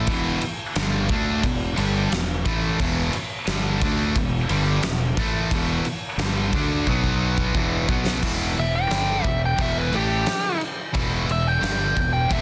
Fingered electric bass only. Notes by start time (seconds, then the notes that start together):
0.07 E1
0.42 muted fingered electric bass stroke
0.76 G1
1.10 D2
1.44 E1
1.78 G1
2.11 E1
2.46 A1
2.80 E1
3.14 muted fingered electric bass stroke
3.47 G1
3.82 D2
4.16 E1
4.50 G1
4.84 E1
5.17 A1
5.51 E1
5.85 muted fingered electric bass stroke
6.18 G1
6.53 D2
6.87 B1
7.55 E1
7.89 B1
8.23 E1
8.57 E1
8.90 G1
9.25 E1
9.58 E1
9.92 A1
10.95 E1
11.28 E1
11.63 G1
11.97 E1
12.31 E1